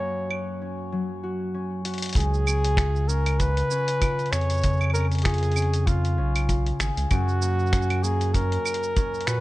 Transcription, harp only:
0.00 2.21 F#2 medium
0.00 0.91 F#3 medium
0.00 3.21 A#3 medium
0.00 0.61 C#4 medium
0.00 0.30 F#4 medium
0.31 1.23 F#4 medium
0.62 1.54 C#4 medium
0.92 2.21 F#3 medium
1.23 1.85 F#4 medium
1.54 2.47 C#4 medium
1.85 2.84 F#4 medium
2.16 4.62 C#3 medium
2.47 3.08 C#4 medium
2.78 3.39 F4 medium
3.09 3.70 C#4 medium
3.40 4.01 F4 medium
3.71 4.94 C#4 medium
4.01 5.24 F4 medium
4.32 6.79 G#4 medium
4.63 7.16 C#3 medium
4.94 5.56 C#4 medium
5.25 5.87 F4 medium
5.56 6.17 C#4 medium
5.87 6.48 F4 medium
6.18 7.72 C#4 medium
6.49 9.01 F4 medium
6.80 9.07 G#4 medium
7.11 9.40 F#2 medium
7.42 8.03 A#3 medium
7.73 8.34 C#4 medium
8.04 9.40 A#3 medium
8.35 8.96 C#4 medium
8.96 9.40 C#4 medium
9.27 9.40 F#4 medium

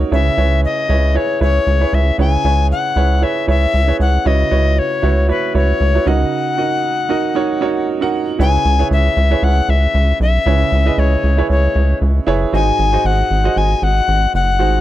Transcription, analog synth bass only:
0.12 0.30 C#2 loud
0.38 0.66 C#2 medium
0.89 1.18 C#2 medium
1.41 1.60 C#2 loud
1.67 1.85 C#2 loud
1.93 2.11 C#2 loud
2.18 2.37 C#2 loud
2.44 2.73 C#2 loud
2.96 3.25 C#2 medium
3.48 3.67 C#2 loud
3.74 3.92 C#2 loud
4.00 4.18 C#2 loud
4.26 4.44 C#2 loud
4.52 4.80 C#2 medium
5.03 5.32 C#2 medium
5.55 5.73 C#2 loud
5.80 5.99 C#2 loud
6.06 6.25 C#2 loud
8.39 8.58 C#2 loud
8.65 8.84 C#2 loud
8.91 9.09 C#2 loud
9.17 9.35 C#2 loud
9.42 9.61 C#2 loud
9.69 9.87 C#2 loud
9.94 10.13 C#2 loud
10.20 10.39 B1 loud
10.46 10.65 C#2 loud
10.72 10.91 C#2 medium
10.98 11.16 C#2 loud
11.24 11.42 C#2 loud
11.50 11.68 C#2 loud
11.75 11.94 C#2 loud
12.01 12.20 C#2 loud
12.27 12.46 F#1 loud
12.53 12.72 G#1 loud
12.79 12.98 G#1 medium
13.05 13.23 G#1 loud
13.31 13.49 G#1 medium
13.56 13.75 G#1 loud
13.82 14.01 G#1 loud
14.08 14.27 G#1 loud
14.34 14.61 F#1 medium
14.60 14.78 G#1 loud

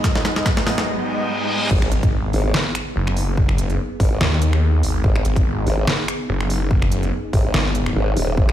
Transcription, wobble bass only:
1.71 1.90 G#1 loud
2.33 2.53 G#1 loud
4.00 4.19 G#1 loud
5.04 5.23 G#1 loud
5.67 5.86 G#1 loud
7.33 7.53 G#1 loud
7.96 8.15 G#1 loud
8.17 8.36 D#1 loud
8.37 8.52 G#1 medium

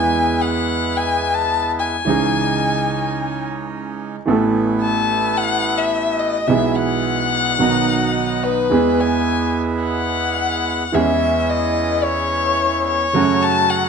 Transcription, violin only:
0.00 0.43 G#5 medium
0.41 0.98 F#5 medium
0.97 1.35 G#5 medium
1.34 1.71 A5 medium
1.79 3.41 G#5 medium
4.82 5.39 A5 medium
5.37 5.79 F#5 medium
5.78 6.21 E5 medium
6.20 6.49 D#5 medium
6.47 6.77 E5 medium
6.76 8.45 F#5 medium
8.44 9.02 B4 medium
9.01 9.56 G#5 medium
9.84 10.96 F#5 medium
10.95 11.51 E5 medium
11.50 12.05 D#5 medium
12.04 12.87 C#5 medium
12.87 13.44 C#5 medium
13.42 13.71 A5 loud
13.70 13.89 F#5 medium

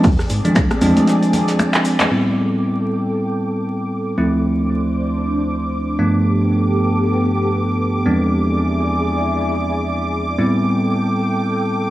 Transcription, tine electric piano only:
0.45 0.69 F3 medium
0.45 0.69 G#3 medium
0.45 0.69 C4 medium
0.45 0.69 D4 medium
0.82 2.10 F3 loud
0.82 2.10 G#3 medium
0.82 2.10 C4 medium
0.82 2.10 D4 loud
2.11 4.15 A2 medium
2.11 4.15 G3 medium
2.11 4.15 B3 medium
2.11 4.15 C4 medium
2.11 4.15 E4 medium
4.18 5.96 D2 medium
4.18 5.96 F3 medium
4.18 5.96 A3 medium
4.18 5.96 C4 medium
4.18 5.96 E4 medium
5.99 8.03 G2 medium
5.99 8.03 F3 medium
5.99 8.03 A3 medium
5.99 8.03 B3 medium
5.99 8.03 D4 medium
8.06 10.36 E2 medium
8.06 10.36 F3 medium
8.06 10.36 G#3 medium
8.06 10.36 B3 medium
8.06 10.36 C4 medium
8.06 10.36 D4 medium
10.38 11.90 A2 medium
10.38 11.90 G3 medium
10.38 11.90 B3 medium
10.38 11.90 C4 medium
10.38 11.90 E4 medium

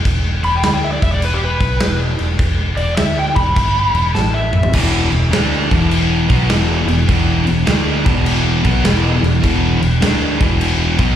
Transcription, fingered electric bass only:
0.05 0.40 E1 medium
0.43 0.61 E1 medium
0.62 0.98 D2 loud
1.02 1.56 E1 medium
1.60 1.79 B1 loud
1.80 2.16 E1 loud
2.19 2.37 E1 medium
2.39 2.75 E1 medium
2.77 2.96 E1 medium
2.99 3.34 D2 loud
3.36 3.55 E1 medium
3.57 3.92 G1 medium
3.95 4.13 E1 loud
4.15 4.70 A1 loud
4.74 5.09 E1 loud
5.13 5.31 E1 medium
5.32 5.68 D2 loud
5.71 6.26 E1 loud
6.30 6.48 B1 loud
6.49 6.85 E1 loud
6.87 7.06 E1 medium
7.09 7.45 E1 medium
7.48 7.66 E1 medium
7.67 8.03 D2 loud
8.05 8.60 E1 loud
8.64 8.83 B1 loud
8.84 9.20 E1 medium
9.23 9.42 E1 medium
9.44 9.79 E1 medium
9.81 10.00 E1 medium
10.01 10.38 D2 medium
10.40 10.95 E1 loud
10.99 11.16 B1 loud

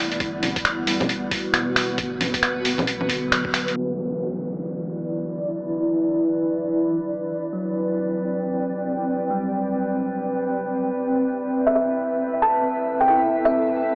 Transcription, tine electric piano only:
0.00 0.22 C3 medium
0.00 0.39 E3 medium
0.00 0.55 G3 medium
0.00 0.66 A3 medium
0.87 2.17 G3 medium
1.54 2.84 B2 medium
3.09 3.94 D3 medium
3.28 4.11 F#3 medium
3.98 5.28 E3 medium
7.53 8.84 F#3 medium
9.31 10.61 G3 medium
13.10 13.95 E4 medium

